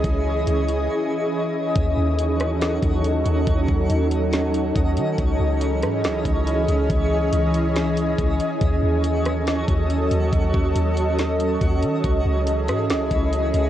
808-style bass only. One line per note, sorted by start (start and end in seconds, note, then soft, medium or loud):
0.04 0.45 C#2 loud
0.47 0.88 C#2 loud
1.76 1.96 D#2 loud
1.97 2.79 D#2 loud
2.83 3.24 D#2 loud
3.26 3.46 D#2 loud
3.47 3.68 D#2 loud
3.68 3.89 D#2 loud
3.90 4.72 D#2 loud
4.76 4.98 D#2 loud
4.97 5.17 D#3 loud
5.18 5.39 C#2 loud
5.40 5.84 C#2 loud
5.83 6.05 G#2 loud
6.04 6.24 C#2 medium
6.25 6.67 C#2 loud
6.68 6.89 C#2 loud
6.90 7.31 C#2 loud
7.33 8.15 C#2 loud
8.18 8.39 C#2 loud
8.61 8.82 D#2 loud
8.83 9.65 D#2 loud
9.68 10.09 D#2 loud
10.11 10.32 D#2 loud
10.33 10.53 D#2 loud
10.54 10.75 D#2 loud
10.75 11.58 D#2 loud
11.61 11.84 D#2 loud
11.83 12.03 D#3 loud
12.04 12.25 C#2 loud
12.25 12.70 C#2 loud
12.68 12.91 G#2 loud
12.90 13.10 C#2 medium
13.11 13.52 C#2 loud
13.54 13.70 C#2 loud